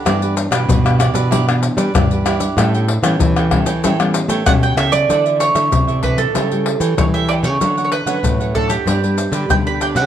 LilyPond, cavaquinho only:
\new Staff \with { instrumentName = "Cavaquinho" } { \time 4/4 \key d \major \tempo 4 = 95 <e' g' b' d''>16 <g' b' d''>16 r16 <g' b' d''>8 <g' b' d''>16 <e' g' b' d''>16 <g' b' d''>16 <e' g' b' d''>16 <g' b' d''>16 r16 <g' b' d''>16 <e' g' b' d''>16 <g' b' d''>16 <e' g' b' d''>8 | <e' a' cis'' g''>16 <a' cis'' g''>16 r16 <a' cis'' g''>8 <a' cis'' g''>16 <e' a' cis'' g''>16 <a' cis'' g''>16 <e' a' cis'' g''>16 <a' cis'' g''>16 r16 <a' cis'' g''>16 <e' a' cis'' g''>16 <a' cis'' g''>16 <e' a' cis'' g''>8 | <d' a' d'' e''>16 <a' d'' e''>16 r16 <a' e''>8 <a' d'' e''>16 <d' a' d'' e''>8 <e' a' cis'' g''>16 <a' cis'' g''>16 r16 <a' cis'' g''>8 <a' cis'' g''>16 <e' a' cis'' g''>16 <a' cis'' g''>16 | <d' a' cis'' fis''>16 <a' cis'' fis''>16 r16 <a' cis'' fis''>8 <a' cis'' fis''>16 <d' a' cis'' fis''>8 <d' g' b' d''>16 <g' b' d''>16 r16 <g' b' d''>8 <g' b' d''>16 <d' g' b' d''>16 <g' b' d''>16 | }